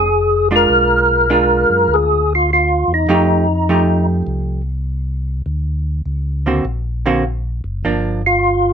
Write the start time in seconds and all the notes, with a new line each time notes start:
Already playing: F1 G#4
0.51 G#3 D4 F4
0.56 A#4
0.69 B1
1.30 G#3 D4 F4
1.69 F#2
1.88 D2
1.94 G#4
2.35 F4
2.53 F4
2.88 E2
2.94 D#4
3.07 F2 F3 A3 D#4 G4
3.69 F3 A3 D#4 G4
4.27 C2
5.46 D2
6.06 C#2
6.46 D3 A#3 C4 F#4
6.65 A#1
7.06 D3 A#3 C4 F#4
7.64 F#1
7.84 G1 F3 A#3 D4
8.26 F4